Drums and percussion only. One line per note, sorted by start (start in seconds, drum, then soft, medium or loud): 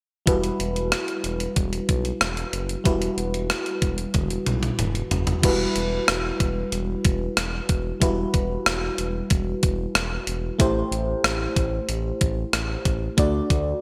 0.27 kick loud
0.27 closed hi-hat medium
0.44 closed hi-hat medium
0.60 closed hi-hat medium
0.76 closed hi-hat soft
0.92 cross-stick medium
0.92 closed hi-hat medium
1.08 closed hi-hat soft
1.24 closed hi-hat medium
1.40 closed hi-hat medium
1.56 kick medium
1.56 closed hi-hat medium
1.73 closed hi-hat soft
1.89 kick medium
1.89 closed hi-hat medium
2.05 closed hi-hat soft
2.21 cross-stick medium
2.21 closed hi-hat medium
2.37 closed hi-hat soft
2.53 closed hi-hat medium
2.69 closed hi-hat soft
2.85 kick loud
2.85 closed hi-hat medium
3.02 closed hi-hat medium
3.18 closed hi-hat medium
3.34 closed hi-hat soft
3.50 cross-stick loud
3.50 closed hi-hat medium
3.66 closed hi-hat soft
3.82 kick medium
3.82 closed hi-hat medium
3.98 closed hi-hat medium
4.14 kick medium
4.14 closed hi-hat medium
4.14 high tom soft
4.30 closed hi-hat soft
4.46 closed hi-hat medium
4.46 mid tom medium
4.63 closed hi-hat soft
4.63 mid tom medium
4.79 closed hi-hat medium
4.79 mid tom medium
4.95 closed hi-hat soft
5.11 closed hi-hat medium
5.11 floor tom medium
5.27 closed hi-hat soft
5.27 floor tom medium
5.43 kick loud
5.43 closed hi-hat medium
5.43 crash medium
5.76 closed hi-hat medium
6.08 cross-stick loud
6.08 closed hi-hat medium
6.40 kick medium
6.40 closed hi-hat medium
6.72 closed hi-hat medium
7.05 kick medium
7.05 closed hi-hat medium
7.37 cross-stick medium
7.37 closed hi-hat medium
7.69 kick medium
7.69 closed hi-hat medium
8.02 kick medium
8.02 closed hi-hat medium
8.34 kick medium
8.34 closed hi-hat medium
8.66 cross-stick loud
8.66 closed hi-hat medium
8.98 closed hi-hat medium
9.30 kick medium
9.30 closed hi-hat medium
9.63 kick medium
9.63 closed hi-hat medium
9.95 cross-stick loud
9.95 closed hi-hat medium
10.27 closed hi-hat medium
10.60 kick loud
10.60 closed hi-hat medium
10.92 closed hi-hat medium
11.24 cross-stick loud
11.24 closed hi-hat medium
11.56 kick medium
11.56 closed hi-hat medium
11.89 closed hi-hat medium
12.21 kick medium
12.21 closed hi-hat medium
12.53 cross-stick medium
12.53 closed hi-hat medium
12.85 kick medium
12.85 closed hi-hat medium
13.18 kick loud
13.18 closed hi-hat medium
13.50 kick medium
13.50 closed hi-hat medium